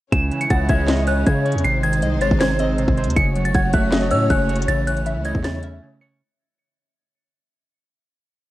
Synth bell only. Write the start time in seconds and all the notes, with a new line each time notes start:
0.13 E7
0.41 C#7
0.51 A6
0.70 G#6
1.08 F#6
1.26 G#6
1.64 C7
1.83 G#6
2.21 A6
2.40 G#6
3.16 C#7
3.45 A6
3.54 G#6
3.73 F#6
4.11 E6
4.30 F#6
4.68 A6
4.87 F#6
5.25 G#6
5.44 A6
6.01 C#7